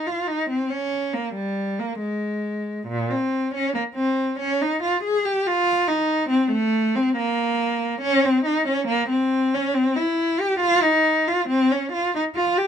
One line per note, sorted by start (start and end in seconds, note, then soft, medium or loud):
0.07 0.28 F4 medium
0.27 0.49 D#4 medium
0.50 0.71 C4 medium
0.70 1.14 C#4 medium
1.13 1.35 A#3 medium
1.35 1.78 G3 medium
1.79 2.01 A#3 medium
2.00 2.86 G#3 medium
2.88 3.09 A#2 medium
3.10 3.53 C4 medium
3.55 3.75 C#4 medium
3.74 3.82 A#3 medium
3.95 4.38 C4 medium
4.40 4.60 C#4 medium
4.61 4.82 D#4 medium
4.83 5.03 F4 medium
5.04 5.24 G#4 medium
5.25 5.46 G4 medium
5.47 5.88 F4 medium
5.87 6.30 D#4 medium
6.30 6.51 C4 medium
6.52 6.94 A3 medium
6.96 7.16 C4 medium
7.16 8.00 A#3 medium
8.02 8.23 C#4 loud
8.25 8.46 C4 medium
8.45 8.67 D#4 medium
8.68 8.89 C#4 medium
8.88 9.09 A#3 medium
9.09 9.51 C4 medium
9.54 9.75 C#4 medium
9.74 9.96 C4 medium
9.96 10.39 E4 medium
10.40 10.61 G4 medium
10.60 10.82 F4 loud
10.82 11.27 D#4 medium
11.28 11.49 F4 medium
11.49 11.71 C4 medium
11.71 11.93 C#4 medium
11.92 12.14 F4 medium
12.15 12.23 D#4 medium
12.35 12.57 F4 medium
12.58 12.67 G4 medium